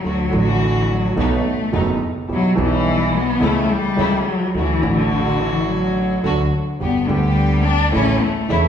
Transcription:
0.04 grand piano D2 D3 F#3 A3 F#4, upright bass D2, cello F#3, string section A3 D4 F#4
0.30 grand piano A1 A2 D3 F#3 A3 F#4, upright bass A1
0.34 string section A3 D4 F#4
0.49 cello E3
0.90 cello F#3
1.16 grand piano B1 B2 D#3 A3 B3 F#4, upright bass B1, cello A3, string section A3 B3 D#4
1.72 grand piano F#1 F#2 D#3 A3 B3 F#4, upright bass F#1, string section A3 B3 D#4
2.28 grand piano B1 B2 E3 G3 B3 G4, upright bass B1, string section G3 B3 E4
2.33 cello F#3
2.54 grand piano B1 B2 E3 G3 B3 G4, upright bass B1
2.58 cello E3, string section G3 B3 E4
3.15 cello B3
3.40 grand piano C#2 C#3 E3 A3 E4, upright bass C#2, string section A3 C#4 E4, cello A3
3.72 cello G3
3.96 grand piano C#2 C#3 E3 A3 E4, upright bass C#2, string section A3 C#4 E4
4.28 cello F#3
4.54 upright bass D2, grand piano D2 D3 F#3 A3 F#4, cello E3, string section A3 D4 F#4
4.81 grand piano A1 A2 D3 F#3 A3 F#4, upright bass A1, string section A3 D4 F#4
4.96 cello D3
5.39 cello E3
5.67 cello F#3
6.23 grand piano D2 D3 F#3 A3 F#4, upright bass D2, string section A3 D4 F#4
6.80 grand piano G1 G2 D3 G3 B3 G4, upright bass G1, string section B3 D4 G4, cello B3
7.07 grand piano D2 D3 G3 B3 G4, upright bass D2, cello G3, string section B3 D4 G4
7.64 cello D4
7.92 grand piano A1 A2 C#3 E3 A3 E4, upright bass A1, string section A3 C#4 E4, cello C#4
8.21 cello A3
8.49 grand piano E1 E2 C#3 E3 A3 E4, upright bass E1, string section A3 C#4 E4

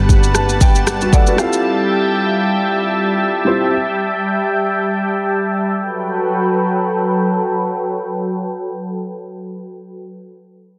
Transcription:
Already playing: fingered electric bass G1, grand piano G3 B3 D4 F#4 B4, analog synth pad G3 B4 F#5 A5
0.09 kick, shaker
0.24 shaker
0.35 grand piano A5, cross-stick, shaker
0.49 shaker
0.61 grand piano G5, kick, shaker
0.75 shaker
0.87 cross-stick, shaker
1.01 grand piano F#4 B4, shaker
1.13 grand piano A4 D5 F#5, kick, shaker
1.27 grand piano F#4 B4, shaker
1.36 grand piano G3 C4 E4 F5, analog synth pad E5 G5, cross-stick, shaker
1.41 grand piano F4 A4
1.53 shaker
3.45 grand piano G3 C4 E4 F4 C5, analog synth pad G5
5.78 analog synth pad F#3 A4 B4 G5

